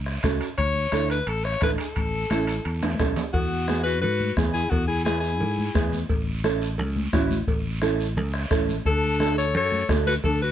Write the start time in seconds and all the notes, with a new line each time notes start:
Already playing: C#2
0.06 bombo rim
0.23 C#2 C#4 F#4 A4, bombo low, bombo rim, high conga, high timbale, short guiro
0.41 high timbale, short guiro
0.58 D2 C#5, bombo low, high conga, high timbale, long guiro
0.76 high conga
0.92 D2 D4 E4 A4, bombo rim, high conga, high timbale, short guiro
1.10 B4, high timbale, short guiro
1.27 A1 A4, high timbale, long guiro
1.45 C#5, bombo rim
1.61 A1 D4 E4 A4 B4, bombo low, bombo rim, high conga, high timbale, short guiro
1.78 A4, high timbale, short guiro
1.96 A1, bombo low, high conga, high timbale, long guiro
2.14 high conga
2.30 A1 C#4 E4 A4, bombo rim, high conga, high timbale, short guiro
2.47 high timbale, short guiro
2.65 E2, high timbale, long guiro
2.83 bombo rim, high conga, high timbale
2.94 high conga
2.99 B1 C#4 E4 A4, bombo low, bombo rim, low timbale, short guiro
3.16 low conga, low timbale, short guiro
3.34 E2 B3 F#4, bombo low, cowbell, high conga, long guiro
3.52 high conga
3.68 B3 E4 G#4, bombo rim, high conga, short guiro
3.84 F#4 B4, short guiro
4.02 G#2 F#4 B4, cowbell, low conga, long guiro
4.20 high conga
4.37 E2 B3 E4 G#4, bombo low, bombo rim, high conga, short guiro
4.53 E4 G#4, short guiro
4.71 E2 B3 F#4, bombo low, cowbell, high conga, long guiro
4.88 E4 G#4, high conga
5.05 B3 E4 G#4, bombo rim, high conga, short guiro
5.21 E4 G#4, short guiro
5.40 G#2, cowbell, low conga, long guiro
5.59 high conga
5.74 E2 B3 E4 G#4, bombo low, bombo rim, high conga, short guiro
5.92 high conga, short guiro
6.09 A1, bombo low, cowbell, long guiro
6.27 high conga
6.43 C#4 E4 A4, bombo rim, high conga, short guiro
6.62 short guiro
6.78 C#2, cowbell, low conga, long guiro
6.96 high conga
7.13 A1 C#4 E4 F#4, bombo low, bombo rim, high conga, low timbale, short guiro
7.31 high conga, short guiro
7.47 A1, bombo low, cowbell, long guiro
7.66 high conga
7.81 C#4 E4 A4, bombo rim, high conga, short guiro
8.00 short guiro
8.17 C#2, cowbell, low conga, long guiro
8.34 bombo rim
8.50 A1 C#4 E4 A4, bombo low, bombo rim, high conga, short guiro
8.69 high conga, short guiro
8.85 D2 D4 A4, bombo low, cowbell, high conga, long guiro
9.03 high conga
9.20 D4 F#4 A4, bombo rim, high conga, short guiro
9.38 A4 C#5, short guiro
9.54 F#2 A4 C#5, cowbell, low conga, long guiro
9.72 high conga
9.88 D2 D4 F#4 A4, bombo low, bombo rim, high conga, low timbale, short guiro
10.06 F#4 B4, high conga, short guiro
10.24 D2 D4 A4, bombo low, cowbell, high conga, low conga, long guiro
10.42 F#4 B4, high conga